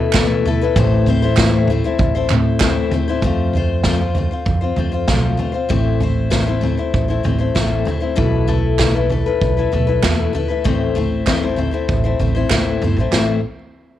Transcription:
Already playing: upright bass B2, steel-string acoustic guitar A3 E4 A4 B4
0.13 steel-string acoustic guitar B2 E3 A3 E4, kick, snare, clap, floor tom
0.17 steel-string acoustic guitar A4 B4
0.45 steel-string acoustic guitar A3 E4 A4 B4, floor tom
0.61 steel-string acoustic guitar A3 E4 A4 B4
0.76 upright bass A1, steel-string acoustic guitar A2 E3 A3 C4 E4 C5, kick, floor tom
1.06 steel-string acoustic guitar A3 C4 E4 C5, floor tom
1.22 steel-string acoustic guitar A3 C4 E4 C5
1.36 steel-string acoustic guitar A2 E3 A3 C4 E4 C5, kick, snare, clap, floor tom
1.68 steel-string acoustic guitar A3 C4 E4, floor tom
1.72 steel-string acoustic guitar C5
1.84 steel-string acoustic guitar A3 C4 E4 C5
1.99 upright bass A1, kick, floor tom
2.15 steel-string acoustic guitar A3 C4 E4 C5
2.29 upright bass A2, steel-string acoustic guitar A3 C4 E4, clap, floor tom
2.34 steel-string acoustic guitar C5
2.60 steel-string acoustic guitar A2 E3 A3 C4 E4, kick, snare, clap, floor tom
2.64 steel-string acoustic guitar C5
2.91 steel-string acoustic guitar A3 C4 E4 C5, floor tom
3.08 steel-string acoustic guitar A3 C4 E4 C5
3.22 upright bass F2, steel-string acoustic guitar F3 A3 C4 F4 C5, kick, floor tom
3.53 steel-string acoustic guitar A3 C4 F4 C5, floor tom
3.84 steel-string acoustic guitar F3 A3 C4 F4 C5, kick, snare, floor tom
3.99 steel-string acoustic guitar C4 F4 C5
4.15 steel-string acoustic guitar A3 C4 F4 C5, floor tom
4.31 steel-string acoustic guitar C4 F4 C5
4.46 upright bass F2, kick, floor tom
4.61 steel-string acoustic guitar C4 F4 C5
4.76 upright bass F2, steel-string acoustic guitar A3 C4 F4 C5, floor tom
4.92 steel-string acoustic guitar C4 F4 C5
5.08 upright bass B1, steel-string acoustic guitar F3 A3 C4 F4 C5, kick, snare, floor tom
5.37 steel-string acoustic guitar A3 C4 F4 C5, floor tom
5.52 steel-string acoustic guitar C4 F4 C5
5.69 upright bass A1, steel-string acoustic guitar A2 E3 A3 C4 E4 C5, kick, floor tom
6.00 steel-string acoustic guitar A3 C4 E4 C5, floor tom
6.30 steel-string acoustic guitar A2 E3 A3 C4 E4 C5, kick, snare, floor tom
6.47 steel-string acoustic guitar A3 C4 E4 C5
6.61 steel-string acoustic guitar A3 C4 E4 C5, floor tom
6.77 steel-string acoustic guitar A3 C4 E4 C5
6.94 upright bass A1, kick, floor tom
7.08 steel-string acoustic guitar A3 C4 E4 C5
7.23 upright bass A1, steel-string acoustic guitar A3 C4 E4 C5, floor tom
7.38 steel-string acoustic guitar A3 C4 E4 C5
7.55 upright bass A1, steel-string acoustic guitar A2 E3 A3 C4 E4 C5, kick, snare, floor tom
7.85 steel-string acoustic guitar A3 C4 E4 C5, floor tom
8.00 steel-string acoustic guitar A3 C4 E4 C5
8.16 upright bass B1, steel-string acoustic guitar B2 E3 A3 E4 A4 B4, kick, floor tom
8.47 steel-string acoustic guitar A3 E4 A4 B4, floor tom
8.79 steel-string acoustic guitar B2 E3 A3 E4 A4 B4, kick, snare, clap, floor tom
8.94 steel-string acoustic guitar A3 E4 A4 B4
9.09 steel-string acoustic guitar A3 E4 A4 B4, floor tom
9.26 steel-string acoustic guitar A3 E4 A4 B4
9.41 upright bass B1, kick, floor tom
9.57 steel-string acoustic guitar A3 E4 A4 B4
9.72 upright bass B1, steel-string acoustic guitar A3 E4 A4 B4, floor tom
9.87 steel-string acoustic guitar A3 E4 A4 B4
10.03 upright bass E2, steel-string acoustic guitar B2 E3 A3 E4 A4 B4, kick, snare, clap, floor tom
10.33 steel-string acoustic guitar A3 E4 A4 B4, floor tom
10.48 steel-string acoustic guitar A3 E4 A4 B4
10.64 upright bass A1, steel-string acoustic guitar A2 E3 A3 C4 E4 C5, kick, floor tom
10.95 steel-string acoustic guitar A3 C4 E4 C5, floor tom
11.26 steel-string acoustic guitar A2 E3 A3 C4 E4 C5, kick, snare, clap, floor tom
11.42 steel-string acoustic guitar A3 C4 E4 C5
11.56 steel-string acoustic guitar A3 C4 E4 C5, floor tom
11.71 steel-string acoustic guitar A3 C4 E4 C5
11.89 upright bass A1, kick, floor tom
12.04 steel-string acoustic guitar A3 C4 E4 C5
12.19 upright bass A1, steel-string acoustic guitar A3 C4 E4 C5, floor tom
12.35 steel-string acoustic guitar A3 C4 E4 C5
12.50 upright bass A1, steel-string acoustic guitar A2 E3 A3 C4 E4 C5, kick, snare, clap, floor tom
12.82 upright bass G1, steel-string acoustic guitar A3 C4 E4 C5, floor tom
12.97 upright bass A1, steel-string acoustic guitar C4 E4 C5
13.01 steel-string acoustic guitar A3
13.11 upright bass A1, steel-string acoustic guitar A2 E3 A3 C4 E4, snare, clap
13.16 steel-string acoustic guitar C5

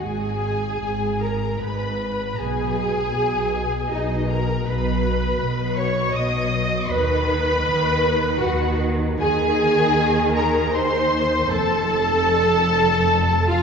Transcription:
0.00 double bass section G#1, cello section G#2, violin section G#4 G#5, viola section G#4
0.82 double bass section G#1, cello section G#2
1.22 viola section A#4, violin section A#4 A#5
1.61 double bass section G#1, cello section G#2, viola section B4, violin section B4 B5
2.35 violin section A#5
2.40 double bass section B1, cello section B2, viola section G#4, violin section G#4 G#5
3.16 double bass section B1, cello section B2
3.90 double bass section B1, cello section B2, viola section D#4, violin section D#4 D#5
4.27 viola section A#4, violin section A#5
4.31 violin section A#4
4.64 double bass section B1, cello section B2, viola section B4, violin section B4 B5
5.39 double bass section B1, cello section B2
5.75 violin section C#5 C#6, viola section C#5
6.13 double bass section B1, cello section B2, violin section D#5 D#6, viola section D#5
6.89 double bass section D#2, cello section D#3, viola section B4, violin section B4 B5
7.67 double bass section D#2, cello section D#3
8.41 double bass section D#2, cello section D#3, violin section F#4 F#5, viola section F#4
9.19 double bass section D#2, cello section D#3, viola section G#4, violin section G#4 G#5
10.35 viola section A#4, violin section A#4 A#5
10.72 viola section C5, violin section C5 C6
11.49 double bass section F1, cello section F2, viola section A4, violin section A4 A5
13.47 viola section F4, violin section F4 F5

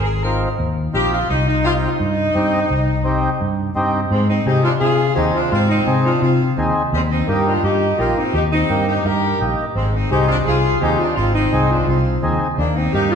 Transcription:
Already playing: fingered electric bass G#1
0.01 saxophone section G#4 A#4
0.22 accordion C4 D#4 F4, saxophone section A#4
0.59 fingered electric bass D#2
0.93 fingered electric bass A#1, accordion C4 D#4 F4, saxophone section G4
1.13 saxophone section F4
1.30 fingered electric bass C2, saxophone section D#4
1.47 saxophone section D#4
1.64 accordion C4 D#4 G4, saxophone section F4
1.83 saxophone section D#4
2.00 fingered electric bass G2
2.34 fingered electric bass G2, accordion C4 D#4 G4
2.70 fingered electric bass C2
3.04 accordion C4 D#4 G4
3.41 fingered electric bass G2
3.75 fingered electric bass G2, accordion C4 D#4 G4
4.11 fingered electric bass G#2, saxophone section G#3 C4
4.29 saxophone section C4 D#4
4.46 fingered electric bass C3, accordion C4 D#4 G#4, saxophone section D#4 G4
4.63 saxophone section D4 F4
4.81 fingered electric bass C3, saxophone section F4 G#4
5.15 fingered electric bass D#2, accordion C4 D#4 G#4, saxophone section D#4 G4
5.33 saxophone section D4 F4
5.51 fingered electric bass G#2, saxophone section C4 F4
5.69 saxophone section C4 D#4
5.87 fingered electric bass C3, accordion C4 D#4 G#4
6.05 saxophone section D4 F4
6.22 fingered electric bass C3, saxophone section C4 F4
6.57 fingered electric bass D#2, accordion C4 D#4 G#4
6.93 fingered electric bass D#2, saxophone section G3 C4
7.11 saxophone section C4 D#4
7.28 fingered electric bass G2, accordion A#3 D#4 G4, saxophone section D#4 G4
7.47 saxophone section D4 F4
7.63 fingered electric bass G2, saxophone section D#4 G4
7.98 fingered electric bass A#1, accordion A#3 D#4 G4, saxophone section A#3 F4
8.17 saxophone section C4 D#4
8.34 fingered electric bass D#2, saxophone section D#4 G4
8.52 saxophone section C4 D#4
8.69 fingered electric bass G2, accordion A#3 D#4 G4
8.88 saxophone section D#4 G4
9.05 fingered electric bass G2, saxophone section G4 A#4
9.40 fingered electric bass A#1, accordion A#3 D#4 G4
9.75 fingered electric bass G#1, saxophone section G#3 C4
9.94 saxophone section C4 D#4
10.11 fingered electric bass C2, accordion C4 D#4 G#4, saxophone section D#4 G4
10.28 saxophone section D4 F4
10.46 fingered electric bass C2, saxophone section F4 G#4
10.81 fingered electric bass D#2, accordion C4 D#4 G#4, saxophone section D#4 G4
10.98 saxophone section D4 F4
11.16 fingered electric bass G#1, saxophone section C4 F4
11.34 saxophone section C4 D#4
11.52 fingered electric bass C2, accordion C4 D#4 G#4
11.70 saxophone section D4 F4
11.87 fingered electric bass C2, saxophone section C4 F4
12.22 fingered electric bass D#2, accordion C4 D#4 G#4
12.58 fingered electric bass D#2, saxophone section A#3 D4
12.76 saxophone section C4 D#4
12.93 fingered electric bass G2, accordion A#3 D#4 G4, saxophone section D#4 G4
13.11 saxophone section F4

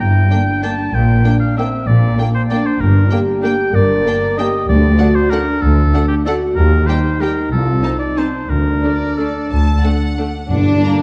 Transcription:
0.00 double bass section G1, cello section G2, french horn section E4, oboe G5
0.30 viola section A#3, violin section D4 G5, french horn section D4
0.62 viola section A#3, violin section D4 G5, oboe A5
0.92 double bass section A#1, cello section A#2, french horn section A#3, oboe G5
1.24 viola section A#3, violin section D4 G5, french horn section D4
1.40 oboe F5
1.57 viola section A#3, french horn section C4, violin section D4 G5, oboe E5
1.87 double bass section A#1, cello section A#2, french horn section A#3, oboe D5
2.18 viola section A#3, violin section D4 G5
2.34 oboe C5
2.49 viola section A#3, violin section D4 G5, french horn section D4, oboe D5
2.66 oboe C5
2.80 double bass section G1, cello section G2, oboe A#4
3.10 viola section A#3, violin section D4 G5, french horn section G4
3.43 viola section A#3, violin section D4 G5, oboe G5
3.73 double bass section G1, cello section G2, french horn section A#4, oboe D5
4.05 viola section A#3, violin section D4 G5
4.37 viola section A#3, violin section D4 G5, french horn section G4, oboe D#5
4.68 cello section D2, double bass section D2, timpani D3, oboe D5
4.98 viola section A3, violin section D4 F#5, french horn section F#4
5.15 oboe C5
5.30 viola section A3, violin section D4 F#5, french horn section D4, oboe A#4
5.61 cello section D2, double bass section D2, oboe A4
5.93 viola section A3, violin section D4 F#5
6.08 oboe G4
6.26 viola section A3, violin section D4 F#5, french horn section F#4, oboe A4
6.56 double bass section D#2, cello section D#2, french horn section G4, oboe A#4
6.87 viola section G3, french horn section D#4, violin section G4 G5, oboe C5
7.21 viola section G3, violin section G4 G5, oboe A#4
7.51 double bass section C2, cello section C2, french horn section F4, oboe A4
7.82 viola section C4, violin section D#4 A5, french horn section D#4
7.99 oboe D5
8.16 viola section C4, violin section D#4 A5, oboe C5
8.49 cello section D2, double bass section D2, french horn section D4, oboe A#4
8.83 viola section A3, violin section D4 D5
9.17 viola section A3, violin section D4, oboe A4
9.50 double bass section D2, cello section D2, violin section A5
9.84 viola section A3, violin section D4 F#5
10.18 viola section A3, violin section D4
10.50 double bass section G1, cello section G2, timpani G2, french horn section D3, violin section D4
10.83 viola section A#3, violin section A#5

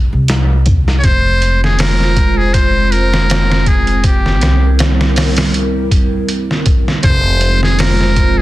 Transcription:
Already playing: upright bass C2
0.13 upright bass C2
0.28 snare, closed hi-hat
0.66 kick, closed hi-hat
0.88 snare
0.99 analog synth pad F4, muted trumpet C#5
1.04 upright bass F1, analog synth pad G#3 C4 C5, muted trumpet C5, kick, closed hi-hat
1.42 closed hi-hat
1.64 muted trumpet G#4, snare
1.79 muted trumpet A#4, snare, open hi-hat
2.01 snare
2.17 kick, closed hi-hat
2.37 muted trumpet G#4
2.54 muted trumpet C5, kick, closed hi-hat
2.92 muted trumpet A#4, closed hi-hat
3.14 snare
3.30 snare, closed hi-hat
3.52 snare
3.66 muted trumpet G#4, kick, closed hi-hat
3.87 closed hi-hat
4.03 analog synth pad G3 E4 A#4, muted trumpet G4, kick, closed hi-hat
4.26 snare
4.41 upright bass C2, snare, closed hi-hat
4.79 snare, closed hi-hat
5.01 snare
5.16 snare, open hi-hat
5.37 snare, open hi-hat
5.54 closed hi-hat
5.91 kick, closed hi-hat
6.29 closed hi-hat
6.51 snare
6.66 kick, closed hi-hat
6.88 snare
7.03 upright bass F1, analog synth pad G#3 C4 F4 C5, muted trumpet C5, kick, closed hi-hat
7.41 closed hi-hat
7.63 muted trumpet G#4, snare
7.79 muted trumpet A#4, snare, open hi-hat
8.01 snare
8.16 kick, closed hi-hat
8.38 muted trumpet G#4

